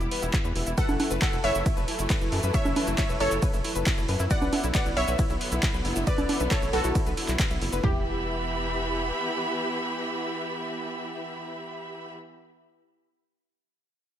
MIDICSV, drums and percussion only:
0, 0, Header, 1, 2, 480
1, 0, Start_track
1, 0, Tempo, 441176
1, 844, Time_signature, 4, 2, 24, 8
1, 15440, End_track
2, 0, Start_track
2, 0, Title_t, "Drums"
2, 5, Note_on_c, 9, 42, 37
2, 5, Note_on_c, 9, 82, 33
2, 114, Note_off_c, 9, 42, 0
2, 114, Note_off_c, 9, 82, 0
2, 124, Note_on_c, 9, 46, 111
2, 233, Note_off_c, 9, 46, 0
2, 245, Note_on_c, 9, 42, 53
2, 245, Note_on_c, 9, 82, 67
2, 353, Note_off_c, 9, 42, 0
2, 353, Note_off_c, 9, 82, 0
2, 364, Note_on_c, 9, 36, 127
2, 365, Note_on_c, 9, 39, 118
2, 365, Note_on_c, 9, 42, 74
2, 365, Note_on_c, 9, 82, 54
2, 473, Note_off_c, 9, 36, 0
2, 473, Note_off_c, 9, 39, 0
2, 473, Note_off_c, 9, 42, 0
2, 473, Note_off_c, 9, 82, 0
2, 485, Note_on_c, 9, 82, 34
2, 593, Note_off_c, 9, 82, 0
2, 604, Note_on_c, 9, 46, 107
2, 713, Note_off_c, 9, 46, 0
2, 725, Note_on_c, 9, 42, 52
2, 725, Note_on_c, 9, 82, 65
2, 834, Note_off_c, 9, 42, 0
2, 834, Note_off_c, 9, 82, 0
2, 844, Note_on_c, 9, 36, 125
2, 844, Note_on_c, 9, 42, 76
2, 844, Note_on_c, 9, 51, 65
2, 844, Note_on_c, 9, 82, 57
2, 953, Note_off_c, 9, 36, 0
2, 953, Note_off_c, 9, 42, 0
2, 953, Note_off_c, 9, 51, 0
2, 953, Note_off_c, 9, 82, 0
2, 965, Note_on_c, 9, 63, 86
2, 965, Note_on_c, 9, 82, 35
2, 1073, Note_off_c, 9, 63, 0
2, 1073, Note_off_c, 9, 82, 0
2, 1085, Note_on_c, 9, 46, 104
2, 1085, Note_on_c, 9, 63, 83
2, 1194, Note_off_c, 9, 46, 0
2, 1194, Note_off_c, 9, 63, 0
2, 1205, Note_on_c, 9, 42, 51
2, 1205, Note_on_c, 9, 82, 69
2, 1314, Note_off_c, 9, 42, 0
2, 1314, Note_off_c, 9, 82, 0
2, 1324, Note_on_c, 9, 36, 123
2, 1326, Note_on_c, 9, 39, 114
2, 1326, Note_on_c, 9, 42, 76
2, 1326, Note_on_c, 9, 51, 68
2, 1326, Note_on_c, 9, 82, 55
2, 1433, Note_off_c, 9, 36, 0
2, 1435, Note_off_c, 9, 39, 0
2, 1435, Note_off_c, 9, 42, 0
2, 1435, Note_off_c, 9, 51, 0
2, 1435, Note_off_c, 9, 82, 0
2, 1445, Note_on_c, 9, 42, 36
2, 1445, Note_on_c, 9, 82, 35
2, 1554, Note_off_c, 9, 42, 0
2, 1554, Note_off_c, 9, 82, 0
2, 1564, Note_on_c, 9, 46, 106
2, 1673, Note_off_c, 9, 46, 0
2, 1685, Note_on_c, 9, 42, 51
2, 1685, Note_on_c, 9, 82, 69
2, 1794, Note_off_c, 9, 42, 0
2, 1794, Note_off_c, 9, 82, 0
2, 1805, Note_on_c, 9, 36, 123
2, 1806, Note_on_c, 9, 42, 79
2, 1806, Note_on_c, 9, 51, 70
2, 1806, Note_on_c, 9, 82, 58
2, 1913, Note_off_c, 9, 36, 0
2, 1914, Note_off_c, 9, 42, 0
2, 1914, Note_off_c, 9, 51, 0
2, 1914, Note_off_c, 9, 82, 0
2, 1925, Note_on_c, 9, 42, 38
2, 1925, Note_on_c, 9, 82, 35
2, 2034, Note_off_c, 9, 42, 0
2, 2034, Note_off_c, 9, 82, 0
2, 2045, Note_on_c, 9, 46, 108
2, 2153, Note_off_c, 9, 46, 0
2, 2165, Note_on_c, 9, 42, 52
2, 2165, Note_on_c, 9, 82, 67
2, 2274, Note_off_c, 9, 42, 0
2, 2274, Note_off_c, 9, 82, 0
2, 2285, Note_on_c, 9, 36, 124
2, 2285, Note_on_c, 9, 39, 114
2, 2285, Note_on_c, 9, 42, 76
2, 2285, Note_on_c, 9, 51, 68
2, 2285, Note_on_c, 9, 82, 55
2, 2393, Note_off_c, 9, 36, 0
2, 2394, Note_off_c, 9, 39, 0
2, 2394, Note_off_c, 9, 42, 0
2, 2394, Note_off_c, 9, 51, 0
2, 2394, Note_off_c, 9, 82, 0
2, 2405, Note_on_c, 9, 82, 33
2, 2514, Note_off_c, 9, 82, 0
2, 2525, Note_on_c, 9, 46, 108
2, 2634, Note_off_c, 9, 46, 0
2, 2645, Note_on_c, 9, 42, 52
2, 2645, Note_on_c, 9, 82, 67
2, 2754, Note_off_c, 9, 42, 0
2, 2754, Note_off_c, 9, 82, 0
2, 2765, Note_on_c, 9, 36, 122
2, 2766, Note_on_c, 9, 42, 80
2, 2766, Note_on_c, 9, 51, 68
2, 2766, Note_on_c, 9, 82, 56
2, 2874, Note_off_c, 9, 36, 0
2, 2874, Note_off_c, 9, 42, 0
2, 2874, Note_off_c, 9, 51, 0
2, 2874, Note_off_c, 9, 82, 0
2, 2885, Note_on_c, 9, 63, 83
2, 2885, Note_on_c, 9, 82, 35
2, 2994, Note_off_c, 9, 63, 0
2, 2994, Note_off_c, 9, 82, 0
2, 3005, Note_on_c, 9, 46, 106
2, 3005, Note_on_c, 9, 63, 78
2, 3114, Note_off_c, 9, 46, 0
2, 3114, Note_off_c, 9, 63, 0
2, 3125, Note_on_c, 9, 42, 55
2, 3125, Note_on_c, 9, 82, 68
2, 3234, Note_off_c, 9, 42, 0
2, 3234, Note_off_c, 9, 82, 0
2, 3245, Note_on_c, 9, 36, 115
2, 3245, Note_on_c, 9, 39, 113
2, 3245, Note_on_c, 9, 42, 79
2, 3245, Note_on_c, 9, 51, 70
2, 3245, Note_on_c, 9, 82, 56
2, 3354, Note_off_c, 9, 36, 0
2, 3354, Note_off_c, 9, 39, 0
2, 3354, Note_off_c, 9, 42, 0
2, 3354, Note_off_c, 9, 51, 0
2, 3354, Note_off_c, 9, 82, 0
2, 3365, Note_on_c, 9, 42, 38
2, 3365, Note_on_c, 9, 82, 34
2, 3474, Note_off_c, 9, 42, 0
2, 3474, Note_off_c, 9, 82, 0
2, 3485, Note_on_c, 9, 46, 105
2, 3594, Note_off_c, 9, 46, 0
2, 3605, Note_on_c, 9, 42, 53
2, 3605, Note_on_c, 9, 82, 71
2, 3714, Note_off_c, 9, 42, 0
2, 3714, Note_off_c, 9, 82, 0
2, 3725, Note_on_c, 9, 36, 115
2, 3725, Note_on_c, 9, 42, 80
2, 3725, Note_on_c, 9, 51, 72
2, 3725, Note_on_c, 9, 82, 58
2, 3834, Note_off_c, 9, 36, 0
2, 3834, Note_off_c, 9, 42, 0
2, 3834, Note_off_c, 9, 51, 0
2, 3834, Note_off_c, 9, 82, 0
2, 3846, Note_on_c, 9, 42, 37
2, 3846, Note_on_c, 9, 82, 35
2, 3954, Note_off_c, 9, 42, 0
2, 3954, Note_off_c, 9, 82, 0
2, 3965, Note_on_c, 9, 46, 106
2, 4074, Note_off_c, 9, 46, 0
2, 4086, Note_on_c, 9, 42, 53
2, 4086, Note_on_c, 9, 82, 67
2, 4194, Note_off_c, 9, 42, 0
2, 4194, Note_off_c, 9, 82, 0
2, 4205, Note_on_c, 9, 36, 120
2, 4205, Note_on_c, 9, 39, 114
2, 4205, Note_on_c, 9, 42, 81
2, 4205, Note_on_c, 9, 51, 70
2, 4205, Note_on_c, 9, 82, 55
2, 4313, Note_off_c, 9, 39, 0
2, 4313, Note_off_c, 9, 42, 0
2, 4313, Note_off_c, 9, 51, 0
2, 4313, Note_off_c, 9, 82, 0
2, 4314, Note_off_c, 9, 36, 0
2, 4325, Note_on_c, 9, 82, 34
2, 4434, Note_off_c, 9, 82, 0
2, 4445, Note_on_c, 9, 46, 103
2, 4553, Note_off_c, 9, 46, 0
2, 4564, Note_on_c, 9, 42, 53
2, 4564, Note_on_c, 9, 82, 66
2, 4673, Note_off_c, 9, 42, 0
2, 4673, Note_off_c, 9, 82, 0
2, 4685, Note_on_c, 9, 36, 118
2, 4685, Note_on_c, 9, 42, 82
2, 4685, Note_on_c, 9, 51, 71
2, 4685, Note_on_c, 9, 82, 54
2, 4793, Note_off_c, 9, 36, 0
2, 4794, Note_off_c, 9, 42, 0
2, 4794, Note_off_c, 9, 51, 0
2, 4794, Note_off_c, 9, 82, 0
2, 4805, Note_on_c, 9, 63, 83
2, 4805, Note_on_c, 9, 82, 34
2, 4914, Note_off_c, 9, 63, 0
2, 4914, Note_off_c, 9, 82, 0
2, 4925, Note_on_c, 9, 46, 104
2, 4925, Note_on_c, 9, 63, 78
2, 5033, Note_off_c, 9, 46, 0
2, 5033, Note_off_c, 9, 63, 0
2, 5044, Note_on_c, 9, 42, 56
2, 5044, Note_on_c, 9, 82, 67
2, 5153, Note_off_c, 9, 42, 0
2, 5153, Note_off_c, 9, 82, 0
2, 5164, Note_on_c, 9, 39, 117
2, 5164, Note_on_c, 9, 42, 81
2, 5164, Note_on_c, 9, 51, 72
2, 5164, Note_on_c, 9, 82, 55
2, 5165, Note_on_c, 9, 36, 115
2, 5273, Note_off_c, 9, 39, 0
2, 5273, Note_off_c, 9, 42, 0
2, 5273, Note_off_c, 9, 51, 0
2, 5273, Note_off_c, 9, 82, 0
2, 5274, Note_off_c, 9, 36, 0
2, 5285, Note_on_c, 9, 42, 39
2, 5285, Note_on_c, 9, 82, 33
2, 5394, Note_off_c, 9, 42, 0
2, 5394, Note_off_c, 9, 82, 0
2, 5405, Note_on_c, 9, 46, 103
2, 5513, Note_off_c, 9, 46, 0
2, 5524, Note_on_c, 9, 42, 58
2, 5524, Note_on_c, 9, 82, 69
2, 5633, Note_off_c, 9, 42, 0
2, 5633, Note_off_c, 9, 82, 0
2, 5645, Note_on_c, 9, 36, 117
2, 5645, Note_on_c, 9, 42, 83
2, 5645, Note_on_c, 9, 51, 74
2, 5645, Note_on_c, 9, 82, 55
2, 5753, Note_off_c, 9, 36, 0
2, 5754, Note_off_c, 9, 42, 0
2, 5754, Note_off_c, 9, 51, 0
2, 5754, Note_off_c, 9, 82, 0
2, 5765, Note_on_c, 9, 42, 39
2, 5765, Note_on_c, 9, 82, 34
2, 5874, Note_off_c, 9, 42, 0
2, 5874, Note_off_c, 9, 82, 0
2, 5885, Note_on_c, 9, 46, 106
2, 5994, Note_off_c, 9, 46, 0
2, 6005, Note_on_c, 9, 42, 57
2, 6005, Note_on_c, 9, 82, 69
2, 6114, Note_off_c, 9, 42, 0
2, 6114, Note_off_c, 9, 82, 0
2, 6125, Note_on_c, 9, 36, 114
2, 6125, Note_on_c, 9, 39, 115
2, 6125, Note_on_c, 9, 42, 82
2, 6125, Note_on_c, 9, 51, 70
2, 6125, Note_on_c, 9, 82, 55
2, 6233, Note_off_c, 9, 36, 0
2, 6234, Note_off_c, 9, 39, 0
2, 6234, Note_off_c, 9, 42, 0
2, 6234, Note_off_c, 9, 51, 0
2, 6234, Note_off_c, 9, 82, 0
2, 6245, Note_on_c, 9, 82, 33
2, 6354, Note_off_c, 9, 82, 0
2, 6364, Note_on_c, 9, 46, 103
2, 6473, Note_off_c, 9, 46, 0
2, 6484, Note_on_c, 9, 42, 55
2, 6484, Note_on_c, 9, 82, 67
2, 6593, Note_off_c, 9, 42, 0
2, 6593, Note_off_c, 9, 82, 0
2, 6604, Note_on_c, 9, 36, 123
2, 6605, Note_on_c, 9, 42, 85
2, 6605, Note_on_c, 9, 51, 68
2, 6605, Note_on_c, 9, 82, 51
2, 6713, Note_off_c, 9, 36, 0
2, 6713, Note_off_c, 9, 42, 0
2, 6713, Note_off_c, 9, 51, 0
2, 6713, Note_off_c, 9, 82, 0
2, 6724, Note_on_c, 9, 42, 41
2, 6724, Note_on_c, 9, 63, 80
2, 6724, Note_on_c, 9, 82, 32
2, 6833, Note_off_c, 9, 42, 0
2, 6833, Note_off_c, 9, 63, 0
2, 6833, Note_off_c, 9, 82, 0
2, 6844, Note_on_c, 9, 46, 104
2, 6844, Note_on_c, 9, 63, 76
2, 6953, Note_off_c, 9, 46, 0
2, 6953, Note_off_c, 9, 63, 0
2, 6964, Note_on_c, 9, 42, 57
2, 6964, Note_on_c, 9, 82, 63
2, 7073, Note_off_c, 9, 42, 0
2, 7073, Note_off_c, 9, 82, 0
2, 7085, Note_on_c, 9, 36, 120
2, 7085, Note_on_c, 9, 39, 120
2, 7085, Note_on_c, 9, 42, 87
2, 7085, Note_on_c, 9, 51, 71
2, 7085, Note_on_c, 9, 82, 53
2, 7193, Note_off_c, 9, 36, 0
2, 7194, Note_off_c, 9, 39, 0
2, 7194, Note_off_c, 9, 42, 0
2, 7194, Note_off_c, 9, 51, 0
2, 7194, Note_off_c, 9, 82, 0
2, 7205, Note_on_c, 9, 42, 41
2, 7205, Note_on_c, 9, 82, 33
2, 7314, Note_off_c, 9, 42, 0
2, 7314, Note_off_c, 9, 82, 0
2, 7324, Note_on_c, 9, 46, 104
2, 7433, Note_off_c, 9, 46, 0
2, 7445, Note_on_c, 9, 42, 58
2, 7445, Note_on_c, 9, 82, 65
2, 7553, Note_off_c, 9, 42, 0
2, 7553, Note_off_c, 9, 82, 0
2, 7565, Note_on_c, 9, 36, 118
2, 7565, Note_on_c, 9, 42, 85
2, 7565, Note_on_c, 9, 51, 73
2, 7565, Note_on_c, 9, 82, 54
2, 7673, Note_off_c, 9, 36, 0
2, 7673, Note_off_c, 9, 42, 0
2, 7673, Note_off_c, 9, 51, 0
2, 7673, Note_off_c, 9, 82, 0
2, 7685, Note_on_c, 9, 42, 41
2, 7685, Note_on_c, 9, 82, 32
2, 7794, Note_off_c, 9, 42, 0
2, 7794, Note_off_c, 9, 82, 0
2, 7805, Note_on_c, 9, 46, 106
2, 7914, Note_off_c, 9, 46, 0
2, 7926, Note_on_c, 9, 39, 40
2, 7926, Note_on_c, 9, 42, 59
2, 7926, Note_on_c, 9, 82, 64
2, 8034, Note_off_c, 9, 39, 0
2, 8034, Note_off_c, 9, 42, 0
2, 8034, Note_off_c, 9, 82, 0
2, 8044, Note_on_c, 9, 36, 119
2, 8046, Note_on_c, 9, 39, 122
2, 8046, Note_on_c, 9, 42, 85
2, 8046, Note_on_c, 9, 51, 70
2, 8046, Note_on_c, 9, 82, 51
2, 8153, Note_off_c, 9, 36, 0
2, 8155, Note_off_c, 9, 39, 0
2, 8155, Note_off_c, 9, 42, 0
2, 8155, Note_off_c, 9, 51, 0
2, 8155, Note_off_c, 9, 82, 0
2, 8166, Note_on_c, 9, 42, 40
2, 8166, Note_on_c, 9, 82, 31
2, 8275, Note_off_c, 9, 42, 0
2, 8275, Note_off_c, 9, 82, 0
2, 8285, Note_on_c, 9, 46, 101
2, 8394, Note_off_c, 9, 46, 0
2, 8405, Note_on_c, 9, 42, 56
2, 8405, Note_on_c, 9, 82, 63
2, 8514, Note_off_c, 9, 42, 0
2, 8514, Note_off_c, 9, 82, 0
2, 8525, Note_on_c, 9, 36, 113
2, 8525, Note_on_c, 9, 43, 111
2, 8633, Note_off_c, 9, 36, 0
2, 8634, Note_off_c, 9, 43, 0
2, 15440, End_track
0, 0, End_of_file